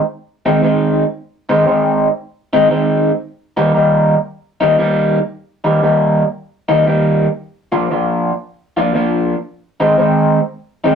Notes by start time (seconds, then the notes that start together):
0.46 D#3 G#3 C4 D#4
0.63 D#3 G#3 C4 D#4
1.49 D#3 G#3 C4 D#4
1.67 D#3 G#3 C4 D#4
2.53 D#3 G#3 C4 D#4
2.70 D#3 G#3 C4 D#4
3.57 D#3 G3 A#3 D#4
3.74 D#3 G3 A#3 D#4
4.61 D#3 G3 A#3 D#4
4.78 D#3 G3 A#3 D#4
5.64 D#3 G3 A#3 D#4
5.83 D#3 G3 A#3 D#4
6.69 D#3 G3 A#3 D#4
6.86 D#3 G3 A#3 D#4
7.72 F3 A#3 D4 F4
7.91 F3 A#3 D4 F4
8.77 F3 A#3 D4 F4
8.94 F3 A#3 D4 F4
9.80 D#3 G#3 C4 D#4
9.98 D#3 G#3 C4 D#4
10.84 D#3 G#3 C4 D#4